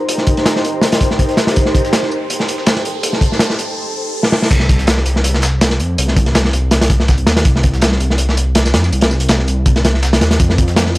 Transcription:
Already playing: D#4 G4 A#4 C5, riser
0.09 closed hi-hat, tambourine
0.18 snare
0.27 kick, closed hi-hat, tambourine
0.37 snare, closed hi-hat
0.46 snare, closed hi-hat, tambourine
0.56 snare
0.64 closed hi-hat, tambourine
0.81 snare, closed hi-hat, tambourine
0.92 snare, closed hi-hat
1.00 kick, closed hi-hat, tambourine
1.11 snare
1.19 kick, closed hi-hat, tambourine
1.29 snare, closed hi-hat
1.37 snare, closed hi-hat, tambourine
1.47 snare, closed hi-hat
1.56 A4, kick, closed hi-hat, tambourine
1.66 snare
1.75 kick, closed hi-hat, tambourine
1.85 snare, closed hi-hat
1.93 snare, closed hi-hat, tambourine
2.03 snare
2.12 tambourine
2.30 closed hi-hat, tambourine
2.40 snare
2.48 closed hi-hat, tambourine
2.58 snare
2.66 snare, closed hi-hat, tambourine
2.77 snare, closed hi-hat
2.85 closed hi-hat, tambourine
3.03 closed hi-hat, tambourine
3.13 snare
3.21 kick, closed hi-hat
3.32 snare
3.39 snare, closed hi-hat, tambourine
3.50 snare
3.59 closed hi-hat, tambourine
4.23 snare
4.32 snare
4.42 snare
4.50 C2, kick, closed hi-hat, crash, tambourine
4.60 snare
4.69 kick, closed hi-hat, tambourine
4.79 snare, closed hi-hat
4.87 C2, snare, closed hi-hat, tambourine
4.98 snare
5.06 C2, closed hi-hat, tambourine
5.16 snare
5.24 closed hi-hat, tambourine
5.34 snare
5.42 snare, closed hi-hat, tambourine
5.61 snare, closed hi-hat, tambourine
5.70 snare, closed hi-hat
5.80 F2, closed hi-hat, tambourine
5.98 C2, closed hi-hat, tambourine
6.08 snare
6.17 kick, closed hi-hat, tambourine
6.26 snare, closed hi-hat
6.35 C2, snare, closed hi-hat, tambourine
6.45 snare
6.53 C2, closed hi-hat, tambourine
6.71 snare, closed hi-hat, tambourine
6.81 snare, closed hi-hat
6.90 kick, closed hi-hat, tambourine
7.00 snare
7.08 kick, snare, closed hi-hat, tambourine
7.18 closed hi-hat
7.27 D#2, snare, closed hi-hat, tambourine
7.37 snare, closed hi-hat
7.45 C2, kick, closed hi-hat, tambourine
7.56 snare
7.63 kick, closed hi-hat, tambourine
7.74 snare, closed hi-hat
7.82 C2, snare, closed hi-hat, tambourine
7.92 snare
8.00 C2, closed hi-hat, tambourine
8.10 snare
8.18 closed hi-hat, tambourine
8.29 snare
8.37 closed hi-hat, tambourine
8.55 snare, closed hi-hat, tambourine
8.65 snare, tambourine
8.74 F2, snare, closed hi-hat
8.84 snare, tambourine
8.92 C2, closed hi-hat, tambourine
9.01 snare, closed hi-hat
9.11 snare, tambourine
9.20 closed hi-hat
9.29 C2, snare, closed hi-hat, tambourine
9.39 snare
9.48 C2, closed hi-hat, tambourine
9.66 kick, closed hi-hat, tambourine
9.76 snare, closed hi-hat
9.84 snare, closed hi-hat, tambourine
9.94 snare
10.03 snare, closed hi-hat, tambourine
10.13 snare, closed hi-hat
10.21 D#2, snare, closed hi-hat, tambourine
10.31 snare, closed hi-hat
10.40 F2, kick, closed hi-hat, tambourine
10.50 snare
10.58 kick, closed hi-hat, tambourine
10.68 snare, closed hi-hat
10.76 F2, snare, closed hi-hat, tambourine
10.86 snare
10.95 F2, tambourine

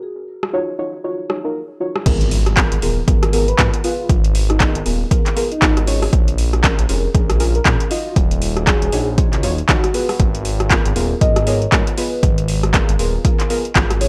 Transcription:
Already playing: F#4
0.43 cross-stick
0.53 D#4 F4 F#4 C#5
0.79 D#4 F4 F#4 C#5
1.04 D#4 F4 F#4 C#5
1.29 D#4 F4 F#4 C#5, cross-stick
1.44 D#4 F4 F#4 A#4
1.80 D#4 F4 F#4 C#5
1.96 cross-stick
2.06 G#1 B3 F4 G#4 A#4, kick, closed hi-hat, crash, impact
2.21 closed hi-hat
2.31 open hi-hat
2.46 cross-stick, closed hi-hat
2.57 B3 F4 G#4 A#4, kick, clap, closed hi-hat
2.72 G#1, closed hi-hat
2.82 D#1 B3 F4 G#4 A#4, open hi-hat
3.08 G#1 B3 F4 G#4 A#4, kick, closed hi-hat
3.23 cross-stick, closed hi-hat
3.33 B3 F4 G#4 A#4, open hi-hat
3.48 B4, closed hi-hat
3.58 G#2 B3 F4 G#4 A#4, kick, clap, closed hi-hat
3.74 closed hi-hat
3.84 B3 F4 G#4 B4, open hi-hat
3.99 F4
4.09 G#1, kick, closed hi-hat
4.24 closed hi-hat
4.35 open hi-hat
4.50 D#4, cross-stick, closed hi-hat
4.60 B3 D#4 F4 G#4 A#4, kick, clap, closed hi-hat
4.75 G#1, closed hi-hat
4.85 D#1 B3 F4 G#4 A#4, open hi-hat
5.11 B3 F4 G#4 A#4, kick, closed hi-hat
5.26 clap, closed hi-hat
5.36 B3 F4 G#4 A#4, open hi-hat
5.52 D#4, closed hi-hat
5.62 G#1 B3 F4 G#4 A#4, kick, clap, closed hi-hat
5.77 cross-stick, closed hi-hat
5.87 C#4 F4 G#4 C#5, open hi-hat
6.02 cross-stick, open hi-hat
6.13 A#1, kick, closed hi-hat
6.28 closed hi-hat
6.38 open hi-hat
6.53 cross-stick, closed hi-hat
6.64 C#4 F4 G#4 A#4, kick, clap, closed hi-hat
6.79 A#1, closed hi-hat
6.89 F1 C#4 F4 G#4 A#4, open hi-hat
7.14 A#1 C#4 F4 G#4 A#4, kick, closed hi-hat
7.30 cross-stick, closed hi-hat
7.40 C#4 F4 G#4 A#4, open hi-hat
7.55 A#4, closed hi-hat
7.65 A#2 C#4 F4 G#4 A#4, kick, clap, closed hi-hat
7.80 closed hi-hat
7.90 D#4 F4 F#4 D#5, open hi-hat
8.06 F4
8.16 D#1, kick, closed hi-hat
8.31 closed hi-hat
8.42 open hi-hat
8.57 cross-stick, closed hi-hat
8.67 D#4 F4 F#4 G#4 C#5, kick, clap, closed hi-hat
8.82 D#1, closed hi-hat
8.92 A#1 D#4 F4 F#4 C#5, open hi-hat
9.18 D#4 F4 F#4 C#5, kick, closed hi-hat
9.33 C#2, clap, closed hi-hat
9.43 D#1 D#4 F4 F#4 C#5, open hi-hat
9.58 closed hi-hat
9.69 D#2 D#4 F4 F#4 C#5, kick, clap, closed hi-hat
9.84 cross-stick, closed hi-hat
9.94 B3 F4 G#4 B4, open hi-hat
10.09 cross-stick, open hi-hat
10.20 G#1, kick, closed hi-hat
10.35 closed hi-hat
10.45 open hi-hat
10.60 cross-stick, closed hi-hat
10.70 B3 F4 G#4 A#4, kick, clap, closed hi-hat
10.85 G#1, closed hi-hat
10.96 D#1 B3 F4 G#4 A#4, open hi-hat
11.21 G#1 B3 F4 G#4 A#4 D#5, kick, closed hi-hat
11.36 cross-stick, closed hi-hat
11.47 B3 F4 G#4 A#4 C#5, open hi-hat
11.62 closed hi-hat
11.72 G#2 B3 F4 G#4 A#4, kick, clap, closed hi-hat
11.87 closed hi-hat
11.97 B3 F4 G#4 B4, open hi-hat
12.23 G#1, kick, closed hi-hat
12.38 closed hi-hat
12.48 open hi-hat
12.63 cross-stick, closed hi-hat
12.74 B3 F4 G#4 A#4, kick, clap, closed hi-hat
12.89 G#1, closed hi-hat
12.99 D#1 B3 F4 G#4 A#4, open hi-hat
13.24 B3 F4 G#4 A#4, kick, closed hi-hat
13.40 clap, closed hi-hat
13.50 B3 F4 G#4 A#4, open hi-hat
13.65 closed hi-hat
13.75 G#1 B3 F4 G#4 A#4, kick, clap, closed hi-hat
13.90 cross-stick, closed hi-hat
14.01 C#4 F4 G#4 C#5, open hi-hat

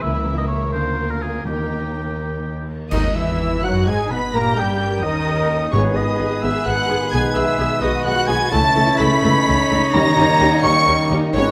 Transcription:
Already playing: E3 E4
0.02 C#2 C#3 A#3 A#4 E5
0.27 A#3
0.38 D#5
0.48 E4 A#4 C#5
0.72 D2 D3 A#3 F4 C5 F5
0.97 A#3
1.11 A#4
1.21 F4 G#4 A#4
1.45 D#2 D#3 D#4 G4 G5
1.70 A#4
1.94 A#3
2.18 A#4
2.42 D#4
2.67 A#3
2.91 D#2 G#2 D#3 D#4 D#5 D#6, concert bass drum, crash
3.15 E2 E3 B3 E4 E5 E6
3.39 G#4
3.62 F#2 F#3 D#4 F#4 B4 F#5 F#6
3.86 G#2 G#3 G#4 G#5 G#6
4.10 B2 B3 D#4 B4 B5 B6
4.33 G2 A#2 A#3 G4 A#4 A#5 A#6
4.56 G2 G3 C#4 G4 G5 G6
4.80 A#4
5.02 D#2 D#3 D#4 A#4 C#5 D#5 D#6
5.26 A#4
5.49 D#4
5.71 G#1 G#2 D#3 G#3 B3 D#4 G#4 B4 C#5 C#6
5.94 G#1 B3 G#4 D#5 D#6
6.18 G#1 B3 G#4
6.42 G#1 B3 G#4 B4 E5 E6
6.66 G#1 B3 G#4 F#5 F#6
6.89 G#1 B3 D#4 G#4
7.11 B1 B2 B3 G#4 G#5 G#6
7.34 B1 B3 G#4 E5 E6
7.59 B1 B3 G#4
7.81 B1 B3 F#4 G#4 B4 D#5 D#6
8.04 B1 B3 G#4 F#5 F#6
8.27 B1 B3 D#4 G#4 G#5 G#6
8.50 C#2 C#3 E3 A3 C#4 E4 A4 C#5 A5 A6
8.75 C#2 A3 C#4 A4
8.98 C#2 A3 A4 B5 B6
9.23 C#2 A3 D#4 A4
9.47 C#2 A3 A4
9.69 C#2 A3 C#4 A4
9.92 D#2 D#3 G3 A#3 C#4 D#4 G4 A#5 A#6
10.17 D#2 C#4 G4
10.39 D#2 C#4 G4 A#4
10.62 D#2 C#4 G4 C#5 C#6 C#7
10.86 D#2 C#4 G4 A#4
11.10 D#2 C#4 G4
11.33 G#1 G#2 G#3 B3 C#4 G#4 B4 C#5 C#6

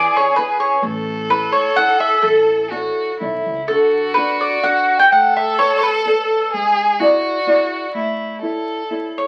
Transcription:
Already playing: E4 G#4 B4 D5
0.16 C#5
0.36 E4 G#4 B4
0.60 C#5
0.82 A1 A3 A4
1.29 E4 A4 B4 C#5
1.52 C#5
1.76 E4 A4 C#5 F#5
2.00 E5
2.22 A1 A4
2.27 E3
2.70 E4 F#4 A4 C#5
3.19 B1 E4 A4 C#5
3.46 C#2
3.68 D3 F#4 A4
4.14 D4 F#4 B4
4.18 A4
4.41 D5
4.63 D4 F#4 A4 F#5
4.99 G5
5.09 A3 A4 F#5
5.36 E5
5.59 A4 B4 C#5
5.79 C#5
5.83 B4
6.05 A4 B4 C#5
6.52 G#3 G#4
7.00 E4 F#4 G#4 D5
7.47 E4 G#4 D5
7.94 A3 E4
8.41 E4 A4 C#5
8.90 E4 A4 C#5
9.18 C#5

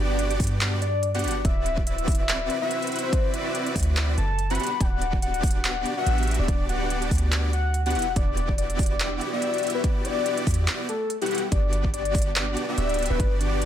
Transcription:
Already playing: G1 B3 D4 F#4 G4 A4 D5
0.00 D5
0.19 closed hi-hat
0.31 closed hi-hat
0.40 G2, kick, closed hi-hat, open hi-hat
0.47 closed hi-hat
0.61 clap, closed hi-hat
0.82 D5, closed hi-hat
1.03 closed hi-hat
1.14 B3 D4 F#4 G4 D5 F#5, closed hi-hat
1.19 closed hi-hat
1.24 G1 B3 D4 F#4 G4 F#5, closed hi-hat
1.28 closed hi-hat
1.31 closed hi-hat
1.45 D1 C4 E4 F#4 B4 D5 E5, kick, closed hi-hat
1.66 closed hi-hat
1.77 kick
1.87 E5, closed hi-hat
1.98 closed hi-hat
2.08 kick, closed hi-hat, open hi-hat
2.15 closed hi-hat
2.20 E5
2.29 clap, closed hi-hat
2.50 closed hi-hat
2.61 C4 E4 F#4 B4 E5
2.71 closed hi-hat
2.82 closed hi-hat
2.87 closed hi-hat
2.92 C4 E4 F#4 B4 E5, closed hi-hat
2.96 closed hi-hat
2.99 closed hi-hat
3.03 C5
3.13 C4 E4 F#4 B4 D5, kick, closed hi-hat
3.34 E5, closed hi-hat
3.55 closed hi-hat
3.66 closed hi-hat
3.76 D2, kick, closed hi-hat, open hi-hat
3.83 closed hi-hat
3.97 clap, closed hi-hat
4.18 F#1 A5, closed hi-hat
4.39 closed hi-hat
4.50 C4 E4 F#4 B4 F#5 B5, closed hi-hat
4.55 closed hi-hat
4.60 B3 D4 F#4 G4 F#5, closed hi-hat
4.63 closed hi-hat
4.67 closed hi-hat
4.80 D1 B3 D4 F#4 G4 D5 F#5, kick, closed hi-hat
5.02 closed hi-hat
5.13 kick
5.22 F#5, closed hi-hat
5.34 closed hi-hat
5.43 kick, open hi-hat
5.47 closed hi-hat
5.51 closed hi-hat
5.55 F#5
5.65 clap, closed hi-hat
5.86 closed hi-hat
5.97 B3 D4 F#4 G4 E5 F#5
6.06 A1, closed hi-hat
6.18 closed hi-hat
6.23 closed hi-hat
6.27 B3 D4 F#4 G4 E5, closed hi-hat
6.31 closed hi-hat
6.34 closed hi-hat
6.39 D1 D5
6.48 D1 B3 D4 F#4 G4 D5, kick, closed hi-hat
6.69 F#5, closed hi-hat
6.90 closed hi-hat
7.02 closed hi-hat
7.11 D2, kick, closed hi-hat, open hi-hat
7.18 closed hi-hat
7.32 clap, closed hi-hat
7.53 F#5, closed hi-hat
7.74 closed hi-hat
7.86 B3 D4 F#4 G4 F#5, closed hi-hat
7.90 closed hi-hat
7.95 E1 B3 E4 F#4 G4 F#5, closed hi-hat
7.99 closed hi-hat
8.02 closed hi-hat
8.16 E1 B3 E4 F#4 G4 D5, kick, closed hi-hat
8.37 closed hi-hat
8.49 kick
8.58 D5, closed hi-hat
8.70 closed hi-hat
8.79 kick, closed hi-hat, open hi-hat
8.86 closed hi-hat
8.90 D5
9.00 clap, closed hi-hat
9.21 closed hi-hat
9.32 B3 E4 F#4 G4 D5 E5
9.42 closed hi-hat
9.54 closed hi-hat
9.58 closed hi-hat
9.63 B3 E4 F#4 G4 E5, closed hi-hat
9.67 closed hi-hat
9.70 closed hi-hat
9.75 B4
9.84 B3 E4 F#4 G4 D5, kick, closed hi-hat
10.05 D5, closed hi-hat
10.26 closed hi-hat
10.37 closed hi-hat
10.47 E2, kick, closed hi-hat, open hi-hat
10.54 closed hi-hat
10.68 clap, closed hi-hat
10.89 A4, closed hi-hat
11.10 closed hi-hat
11.21 B3 E4 F#4 G4 F#5, closed hi-hat
11.26 closed hi-hat
11.31 B3 E4 F#4 G4 F#5, closed hi-hat
11.35 closed hi-hat
11.38 closed hi-hat
11.52 G1 B3 D4 F#4 G4 D5, kick, closed hi-hat
11.73 closed hi-hat
11.84 kick
11.94 D5, closed hi-hat
12.05 closed hi-hat
12.15 kick, closed hi-hat, open hi-hat
12.22 closed hi-hat
12.26 D5
12.36 clap, closed hi-hat
12.57 closed hi-hat
12.68 B3 D4 F#4 G4 D5 E5
12.78 D1, closed hi-hat
12.89 closed hi-hat
12.94 closed hi-hat
12.99 B3 D4 F#4 G4 E5, closed hi-hat
13.03 closed hi-hat
13.06 closed hi-hat
13.10 D1 B4
13.20 G1 B3 D4 F#4 G4 D5, kick, closed hi-hat
13.40 D5, closed hi-hat
13.62 closed hi-hat

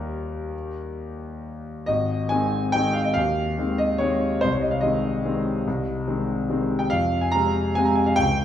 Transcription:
Already playing: D#2 D#3 G3 A#3 A#4
1.86 G#1 D#5
2.29 D#3 G#3 C4 G#5
2.72 D#3 G#3 C4 G5
2.93 F5
3.04 D#5
3.14 D#2 F5
3.58 D#3 G#3 C4
3.78 D#5
3.98 D#3 G#3 C4 C#5
4.41 C2 C5
4.52 C#5
4.61 D#5
4.71 F5
4.81 D#3 G#3 C4 D#5
5.25 D#3 G#3 C4
5.67 C2
6.07 D#3 G#3 C4
6.49 D#3 G#3 C4
6.79 G5
6.90 F2 F5
7.21 G#5
7.31 C3 G#3 C4 A#5
7.75 C3 G#3 C4 G#5
7.85 A#5
7.95 G#5
8.06 F5
8.16 C#2 G5

